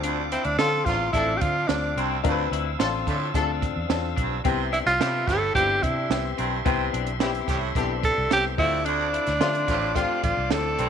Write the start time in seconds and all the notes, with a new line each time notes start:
Already playing: D2 C4 D4 F4 A4 F5 D6
0.03 D2 D4, closed hi-hat
0.32 C4 E4, closed hi-hat
0.45 D2 D4, closed hi-hat
0.58 D3 F3 C4 D4 F4 A4, snare, closed hi-hat
0.85 A1 E2 D3 F3 C4 F4, kick, snare, closed hi-hat
1.13 A1 F3 A3 C4 D4 E4 F4 A4, kick, closed hi-hat
1.37 F4 G4
1.41 D3, kick, closed hi-hat
1.68 D2 C4 D4 F4 A4, snare, closed hi-hat
1.96 C2 D2 C4 E6, closed hi-hat
2.24 D2 C4 D4 F4 A#4, kick, closed hi-hat
2.31 B4
2.51 D2 E4, closed hi-hat
2.79 A1 F3 A3 C4 D4 F4 A4, snare, closed hi-hat
3.06 A2 D3 F3 A3 D4 A4, kick, closed hi-hat
3.33 D2 F3 A3 C4 D4 F4 G#4 A4, kick, closed hi-hat
3.42 A4
3.62 kick, closed hi-hat
3.76 E2
3.89 E2 C4 D4 E4 A4, snare, closed hi-hat
3.96 F4
4.16 B1 G2 D4, kick, closed hi-hat
4.44 C2 C3 B3 C4 E4 G4 E5 C6, kick, closed hi-hat
4.72 D4 E4, closed hi-hat
4.86 C2 F4, snare, closed hi-hat
4.99 C3 E3 G3 B3 C4 E4 G4, snare, closed hi-hat
5.07 A4
5.28 G1 A2 E3 G3 C4 G4 A4, kick, snare, closed hi-hat
5.54 G1 E3 G3 B3 C4 D4 E4 F4 G4, kick, closed hi-hat
5.62 G4
5.83 C3 E4, kick, closed hi-hat
6.10 C2 B3 C4 E4 G4, snare, closed hi-hat
6.38 B1 G2 C4, closed hi-hat
6.65 C2 C3 B3 C4 E4 G4, kick, closed hi-hat
6.93 B1 D4, closed hi-hat
7.07 closed hi-hat
7.20 E3 G3 B3 C4 E4 G4, snare, closed hi-hat
7.35 closed hi-hat
7.48 C2 A2 E3 G3 C4 G4, kick, closed hi-hat
7.75 B1 E3 G3 B3 C4 D4 E4 G4 A4, kick, closed hi-hat
8.03 A4, kick, closed hi-hat
8.18 C2
8.31 C2 B3 C4 E4 G4 A4, snare, closed hi-hat
8.58 D2 G2 A3 C4 D4 E4 F4 C5 D5 D6, kick, open hi-hat
8.85 D2 D4, closed hi-hat
9.13 E4, closed hi-hat
9.27 D2, snare, closed hi-hat
9.40 D3 F3 A3 C4 D4 F4 E5, snare, closed hi-hat
9.55 closed hi-hat
9.68 A1 A2 D3 F3 C4 F4, kick, snare, closed hi-hat
9.94 D3 F3 A3 C4 D4 F4 G4, kick, closed hi-hat
10.23 A1 F4, kick, closed hi-hat
10.37 C2
10.51 D2 A3 C4 D4 E4 A4, snare, closed hi-hat
10.79 B1 G2 C4, closed hi-hat